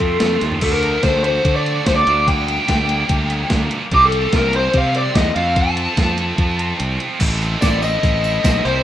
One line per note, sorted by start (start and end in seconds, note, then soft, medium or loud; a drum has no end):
0.00 0.18 F2 medium
0.00 0.20 C3 medium
0.00 0.20 F3 medium
0.00 0.19 A3 medium
0.00 0.21 A3 medium
0.00 0.21 C4 medium
0.00 0.20 F4 medium
0.00 0.40 A4 medium
0.00 kick medium
0.00 closed hi-hat medium
0.20 0.40 F2 medium
0.20 0.48 C3 medium
0.20 0.48 F3 medium
0.20 0.61 A3 medium
0.20 0.49 A3 medium
0.20 0.62 C4 medium
0.20 0.49 C4 medium
0.20 0.62 F4 medium
0.20 snare loud
0.20 closed hi-hat medium
0.41 0.61 D#2 medium
0.41 snare medium
0.41 closed hi-hat medium
0.52 floor tom medium
0.61 0.96 D2 medium
0.61 1.66 D3 medium
0.61 2.06 F3 medium
0.61 2.07 A3 medium
0.61 2.08 D4 medium
0.61 0.72 A4 medium
0.61 kick medium
0.61 closed hi-hat medium
0.61 crash medium
0.73 1.02 A#4 medium
0.83 1.44 A4 medium
0.83 closed hi-hat medium
1.03 1.38 D2 medium
1.03 1.86 D4 medium
1.03 1.22 C5 medium
1.03 kick medium
1.03 snare medium
1.03 closed hi-hat medium
1.23 1.65 C4 medium
1.23 1.55 C5 medium
1.23 closed hi-hat medium
1.45 1.79 D3 medium
1.45 2.07 A4 medium
1.45 kick loud
1.45 closed hi-hat medium
1.55 1.84 D5 medium
1.66 2.07 C4 medium
1.66 closed hi-hat medium
1.86 2.03 D2 medium
1.86 2.07 D4 medium
1.86 1.91 C5 medium
1.86 kick loud
1.86 snare loud
1.86 closed hi-hat medium
1.95 2.27 D5 medium
2.06 2.58 D2 medium
2.06 2.26 D3 medium
2.06 3.90 G3 medium
2.06 3.93 A#3 medium
2.06 3.93 D4 medium
2.06 closed hi-hat medium
2.27 3.31 D3 medium
2.27 3.47 G5 medium
2.27 kick loud
2.27 closed hi-hat medium
2.48 3.08 G4 medium
2.48 closed hi-hat medium
2.68 3.03 D2 medium
2.68 3.51 D4 medium
2.68 kick loud
2.68 snare medium
2.68 closed hi-hat medium
2.89 3.30 A#3 medium
2.89 closed hi-hat medium
3.09 3.43 D2 medium
3.09 3.92 G4 medium
3.09 kick loud
3.09 closed hi-hat medium
3.30 3.93 A#3 medium
3.30 closed hi-hat medium
3.50 3.68 D2 medium
3.50 3.93 D4 medium
3.50 kick loud
3.50 snare loud
3.50 closed hi-hat medium
3.71 3.93 G3 medium
3.71 closed hi-hat medium
3.91 4.26 C2 loud
3.91 4.96 C3 medium
3.91 5.36 G3 medium
3.91 5.35 C4 medium
3.91 5.36 F4 medium
3.91 4.04 G4 medium
3.91 kick loud
3.91 closed hi-hat medium
4.05 4.36 A4 medium
4.12 4.74 G4 medium
4.12 closed hi-hat medium
4.33 4.67 C2 medium
4.33 5.15 F4 medium
4.33 4.55 A#4 medium
4.33 kick loud
4.33 snare loud
4.33 closed hi-hat medium
4.53 4.95 C4 medium
4.53 4.76 C5 medium
4.53 closed hi-hat medium
4.74 5.08 C3 medium
4.74 5.37 G4 medium
4.74 4.95 F5 medium
4.74 kick loud
4.74 closed hi-hat medium
4.95 5.97 C4 medium
4.95 5.15 D5 medium
4.95 closed hi-hat medium
5.15 5.33 E2 medium
5.15 5.37 F4 medium
5.15 5.35 D#5 medium
5.15 kick loud
5.15 snare loud
5.15 closed hi-hat medium
5.35 5.87 F2 medium
5.35 5.55 F2 medium
5.35 7.19 C4 medium
5.35 7.21 F4 medium
5.35 7.21 A4 medium
5.35 5.57 F5 medium
5.35 closed hi-hat medium
5.56 6.59 F2 medium
5.56 6.76 A5 medium
5.56 kick loud
5.56 closed hi-hat medium
5.77 6.37 F4 medium
5.77 closed hi-hat medium
5.97 6.31 F2 medium
5.97 6.78 C4 medium
5.97 kick loud
5.97 snare loud
5.97 closed hi-hat medium
6.17 6.57 A3 medium
6.17 closed hi-hat medium
6.38 6.72 F2 medium
6.38 7.21 F4 medium
6.38 kick loud
6.38 closed hi-hat medium
6.59 7.20 A3 medium
6.59 closed hi-hat medium
6.79 6.97 C2 medium
6.79 7.21 C4 medium
6.79 closed hi-hat medium
7.00 7.21 F3 medium
7.00 closed hi-hat medium
7.20 7.55 A1 loud
7.20 7.82 A2 medium
7.20 7.61 E3 medium
7.20 7.62 A3 medium
7.20 7.60 C4 medium
7.20 7.63 C4 medium
7.20 7.61 E4 medium
7.20 7.63 E4 loud
7.20 7.62 A4 loud
7.20 8.64 A4 medium
7.20 8.64 D#5 medium
7.20 8.83 G5 medium
7.20 8.83 C6 medium
7.20 kick loud
7.20 open hi-hat medium
7.20 crash loud
7.20 tambourine medium
7.42 open hi-hat medium
7.42 tambourine soft
7.60 7.96 A1 medium
7.60 7.83 A3 medium
7.60 8.43 C4 medium
7.60 7.83 C4 medium
7.60 7.83 E4 medium
7.60 7.81 A4 medium
7.60 7.82 D5 loud
7.60 kick loud
7.60 snare loud
7.60 open hi-hat medium
7.60 tambourine medium
7.64 7.80 E4 medium
7.82 8.43 A3 medium
7.82 8.44 C4 medium
7.82 8.44 E4 medium
7.82 8.24 E4 medium
7.82 8.21 A4 medium
7.82 8.67 D#5 loud
7.82 open hi-hat medium
7.82 tambourine medium
8.03 8.37 A1 loud
8.03 kick loud
8.03 open hi-hat medium
8.03 tambourine soft
8.23 8.43 E4 medium
8.23 8.45 A4 medium
8.23 open hi-hat medium
8.23 tambourine medium
8.43 8.61 B1 medium
8.43 8.63 A2 medium
8.43 8.63 E3 medium
8.43 8.63 A3 loud
8.43 8.63 C4 medium
8.43 8.64 C4 medium
8.43 8.63 E4 medium
8.43 8.62 E4 medium
8.43 8.64 A4 loud
8.43 kick loud
8.43 snare loud
8.43 open hi-hat medium
8.43 tambourine medium
8.64 8.83 C2 medium
8.64 8.83 C3 medium
8.64 8.83 G3 medium
8.64 8.83 C4 medium
8.64 8.83 E4 medium
8.64 8.83 G4 medium
8.64 8.83 A#4 medium
8.64 8.83 C5 medium
8.64 8.83 E5 medium
8.64 open hi-hat medium